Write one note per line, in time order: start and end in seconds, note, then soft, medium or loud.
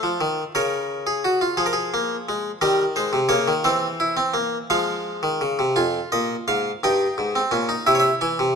0.00 0.20 F3 medium
0.00 0.52 A4 medium
0.00 0.52 C5 medium
0.21 0.42 D#3 medium
0.55 1.56 C#3 medium
0.55 1.06 A#4 medium
0.55 1.56 C#5 medium
1.07 1.24 G#4 medium
1.25 1.41 F#4 medium
1.41 1.58 F4 medium
1.57 2.58 F3 medium
1.57 1.65 G#4 medium
1.66 1.73 A#4 medium
1.73 2.59 G#4 medium
1.94 2.15 A#3 medium
2.29 2.50 G#3 medium
2.61 3.12 D#3 medium
2.61 2.83 G3 medium
2.61 2.83 A#4 medium
2.96 3.18 G#3 medium
2.96 3.17 C5 medium
3.13 3.30 C3 medium
3.29 3.46 C#3 medium
3.29 3.51 A#3 medium
3.29 3.51 C#5 medium
3.48 3.65 D#3 medium
3.64 4.67 E3 medium
3.64 3.86 C4 medium
3.64 4.67 C5 medium
4.00 4.17 E4 medium
4.17 4.34 C4 medium
4.34 4.56 A#3 medium
4.70 5.22 F3 medium
4.70 5.74 G#3 medium
4.70 5.74 F5 medium
5.23 5.41 D#3 medium
5.41 5.59 C#3 medium
5.59 5.76 C3 medium
5.76 5.99 F2 medium
5.76 6.80 F4 medium
5.76 5.99 G#5 medium
6.12 6.34 A#2 medium
6.12 6.34 D#5 medium
6.48 6.70 G#2 medium
6.48 6.70 F5 medium
6.83 7.05 G2 medium
6.83 7.34 D#4 medium
6.83 7.84 G5 medium
7.18 7.39 G#2 medium
7.35 7.52 C4 medium
7.51 7.73 A#2 medium
7.51 7.69 C#4 medium
7.69 7.86 D#4 medium
7.87 8.08 C3 medium
7.87 8.55 E4 medium
7.87 7.91 E5 medium
7.95 8.01 C#5 medium
8.00 8.13 E5 medium
8.21 8.39 E3 medium
8.21 8.43 G#5 medium
8.39 8.55 C3 medium